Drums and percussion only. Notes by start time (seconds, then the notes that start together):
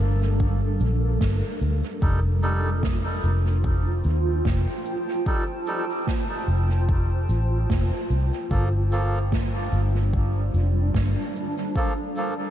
0.40 kick
0.80 cabasa
1.21 kick, snare
1.62 cabasa
2.02 kick
2.43 cabasa
2.83 kick, snare
3.24 cabasa
3.64 kick
4.04 cabasa
4.45 kick, snare
4.85 cabasa
5.26 kick
5.67 cabasa
6.07 kick, snare
6.48 cabasa
6.89 kick
7.29 cabasa
7.70 kick, snare
8.11 cabasa
8.51 kick
8.92 cabasa
9.32 kick, snare
9.73 cabasa
10.13 kick
10.54 cabasa
10.94 kick, snare
11.36 cabasa
11.76 kick
12.16 cabasa